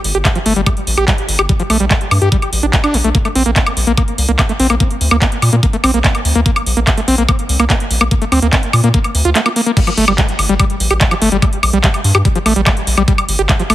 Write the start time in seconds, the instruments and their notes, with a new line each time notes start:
0.04 analog synth bass G1, open hi-hat
0.15 analog synth bass G1, acid bass G4
0.25 acid bass G3, kick, clap, closed hi-hat, high woodblock
0.35 acid bass F3, closed hi-hat
0.46 analog synth bass G1, acid bass A3, open hi-hat
0.56 analog synth bass G1, acid bass G3, closed hi-hat
0.66 acid bass G3, kick, closed hi-hat, high woodblock
0.77 closed hi-hat
0.87 analog synth bass A1, open hi-hat
0.97 analog synth bass A1, acid bass G4, closed hi-hat, high woodblock
1.08 acid bass G3, kick, clap, closed hi-hat
1.18 closed hi-hat
1.28 analog synth bass G1, open hi-hat
1.39 analog synth bass G1, acid bass G4, high woodblock
1.49 acid bass G3, kick, closed hi-hat
1.60 acid bass F3, closed hi-hat
1.70 analog synth bass A#1, acid bass A3, open hi-hat, high woodblock
1.80 analog synth bass A#1, acid bass G3, closed hi-hat
1.91 acid bass G3, kick, clap, closed hi-hat
2.01 closed hi-hat
2.11 analog synth bass G2, open hi-hat, high woodblock
2.22 analog synth bass G2, acid bass G4, closed hi-hat
2.32 acid bass G3, kick, closed hi-hat
2.42 closed hi-hat, high woodblock
2.53 analog synth bass A1, open hi-hat
2.63 analog synth bass A1, acid bass D4, closed hi-hat
2.73 acid bass A3, kick, clap, closed hi-hat
2.84 acid bass D4, closed hi-hat, high woodblock
2.94 analog synth bass A#1, acid bass G3, open hi-hat
3.04 analog synth bass A#1, acid bass A3, closed hi-hat
3.15 acid bass A#3, kick, closed hi-hat
3.25 acid bass A3, closed hi-hat, high woodblock
3.35 analog synth bass A#1, acid bass C4, open hi-hat
3.46 analog synth bass A#1, acid bass A#3, closed hi-hat
3.56 acid bass A#3, kick, clap, closed hi-hat
3.66 closed hi-hat, high woodblock
3.77 analog synth bass A#1, open hi-hat
3.87 analog synth bass A#1, acid bass A#3, closed hi-hat
3.97 acid bass A#3, kick, closed hi-hat, high woodblock
4.08 closed hi-hat
4.18 analog synth bass C2, open hi-hat
4.29 analog synth bass C2, acid bass A#3, closed hi-hat
4.39 acid bass A#3, kick, clap, closed hi-hat, high woodblock
4.49 acid bass A3, closed hi-hat
4.60 analog synth bass A#1, acid bass C4, open hi-hat
4.70 analog synth bass A#1, acid bass A#3, closed hi-hat, high woodblock
4.80 acid bass A#3, kick, closed hi-hat
4.91 closed hi-hat
5.01 analog synth bass D2, open hi-hat
5.11 analog synth bass D2, acid bass A#3, high woodblock
5.22 acid bass A#3, kick, clap, closed hi-hat
5.32 closed hi-hat
5.42 analog synth bass A#2, open hi-hat, high woodblock
5.53 analog synth bass A#2, acid bass A#3, closed hi-hat
5.63 acid bass A#3, kick, closed hi-hat
5.73 acid bass A3, closed hi-hat
5.84 analog synth bass A#1, acid bass C4, open hi-hat, high woodblock
5.94 analog synth bass A#1, acid bass A#3, closed hi-hat
6.04 acid bass A#3, kick, clap, closed hi-hat
6.15 closed hi-hat, high woodblock
6.25 analog synth bass D2, open hi-hat
6.35 analog synth bass D2, acid bass A#3, closed hi-hat
6.46 acid bass A#3, kick, closed hi-hat
6.56 closed hi-hat, high woodblock
6.66 analog synth bass A#1, open hi-hat
6.77 analog synth bass A#1, acid bass A#3, closed hi-hat
6.87 acid bass A#3, kick, clap, closed hi-hat, high woodblock
6.97 acid bass A3, closed hi-hat
7.08 analog synth bass A#1, acid bass C4, open hi-hat
7.18 analog synth bass A#1, acid bass A#3, closed hi-hat
7.28 acid bass A#3, kick, closed hi-hat, high woodblock
7.39 closed hi-hat
7.49 analog synth bass C2, open hi-hat
7.60 analog synth bass C2, acid bass A#3, high woodblock
7.70 acid bass A#3, kick, clap, closed hi-hat
7.80 closed hi-hat
7.91 analog synth bass A#1, open hi-hat
8.01 analog synth bass A#1, acid bass A#3, high woodblock
8.11 acid bass A#3, kick, closed hi-hat
8.22 acid bass A3, closed hi-hat
8.32 analog synth bass D2, acid bass C4, open hi-hat, high woodblock
8.42 analog synth bass D2, acid bass A#3, closed hi-hat
8.53 acid bass A#3, kick, clap, closed hi-hat
8.63 closed hi-hat
8.73 analog synth bass A#2, open hi-hat, high woodblock
8.84 analog synth bass A#2, acid bass A#3, closed hi-hat
8.94 acid bass A#3, kick, closed hi-hat
9.04 closed hi-hat, high woodblock
9.15 analog synth bass D2, open hi-hat
9.25 analog synth bass D2, acid bass F4, closed hi-hat
9.35 acid bass A3, clap, closed hi-hat
9.46 acid bass A#3, closed hi-hat, high woodblock
9.56 acid bass A#3, open hi-hat
9.66 acid bass A#3, closed hi-hat
9.77 acid bass G3, kick, closed hi-hat, crash
9.87 acid bass F3, closed hi-hat, high woodblock
9.97 analog synth bass G1, acid bass A3, open hi-hat
10.08 analog synth bass G1, acid bass G3, closed hi-hat, high woodblock
10.18 acid bass G3, kick, clap, closed hi-hat
10.29 closed hi-hat
10.39 analog synth bass G1, open hi-hat, high woodblock
10.49 analog synth bass G1, acid bass G3, closed hi-hat
10.60 acid bass G3, kick, closed hi-hat, high woodblock
10.70 closed hi-hat
10.80 analog synth bass A1, open hi-hat
10.91 analog synth bass A1, acid bass G4, closed hi-hat, high woodblock
11.01 acid bass G3, kick, clap, closed hi-hat
11.11 acid bass F3, closed hi-hat, high woodblock
11.22 analog synth bass G1, acid bass A3, open hi-hat
11.32 analog synth bass G1, acid bass G3, closed hi-hat
11.42 acid bass G3, kick, closed hi-hat, high woodblock
11.53 closed hi-hat
11.63 analog synth bass A#1, open hi-hat, high woodblock
11.73 analog synth bass A#1, acid bass G3, closed hi-hat
11.84 acid bass G3, kick, clap, closed hi-hat
11.94 closed hi-hat, high woodblock
12.04 analog synth bass G2, open hi-hat
12.15 analog synth bass G2, acid bass G4, high woodblock
12.25 acid bass G3, kick, closed hi-hat
12.35 acid bass F3, closed hi-hat
12.46 analog synth bass A1, acid bass A3, open hi-hat, high woodblock
12.56 analog synth bass A1, acid bass G3, closed hi-hat
12.66 acid bass G3, kick, clap, closed hi-hat, high woodblock
12.77 closed hi-hat
12.87 analog synth bass A#1, open hi-hat
12.97 analog synth bass A#1, acid bass G3, closed hi-hat, high woodblock
13.08 acid bass G3, kick, closed hi-hat
13.18 closed hi-hat, high woodblock
13.29 analog synth bass G1, open hi-hat
13.39 analog synth bass G1, acid bass G4, closed hi-hat
13.49 acid bass G3, kick, clap, closed hi-hat, high woodblock
13.60 acid bass F3, closed hi-hat
13.70 analog synth bass G1, acid bass A3, open hi-hat, high woodblock